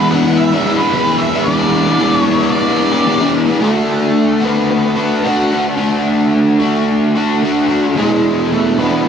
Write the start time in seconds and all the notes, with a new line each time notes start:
Already playing: E2 E3 G#3 B3 D4 E4 B4
0.11 G#3 B3 D4 E4 F#5
0.25 G#3 B3 D4 E4
0.37 E5
0.51 G#3 B3 D4 E4
0.65 G#3 B3 D4 E4
0.77 B3 E4 B4
0.81 G#3 D4
0.92 E2 E3 G#3 B3 D4 E4
1.05 G#3 B3 D4 E4
1.18 E5
1.33 G#3 B3 D4 E4
1.44 E2 E3 G#3 D5
1.48 B3 D4 E4
1.72 G#3 B3 D4 E4
1.87 G#3 B3 D4 E4
2.00 E2 E3 G#3 B3 D4 E4
2.18 C#5
2.26 G#3 B3 D4 E4
2.39 G#3 B3 D4 E4
2.51 D5
2.66 G#3 B3 D4 E4
2.79 G#3 B3 D4 E4
2.92 G#3 B3 D4 E4
3.06 E2 E3 G#3 B3 D4 E4
3.20 G#3 B3 D4 E4
3.46 G#3 B3 D4 E4
3.60 D3 A3 D4 F#4
4.40 A3 D4 F#4
4.45 B3
4.71 B3
4.95 A3 D4 F#4
5.23 D3 A3 D4 F#4
5.50 A3 D4 F#4
5.76 D3 A3 D4 F#4
6.60 A3 D4 F#4
7.15 A3 D4 F#4
7.42 D3 A3 D4 F#4
7.68 A3 D4 F#4
7.94 E2 B2 E3 G#3 D4 E4
8.53 A3
8.78 E3 G#3 B3 D4 E4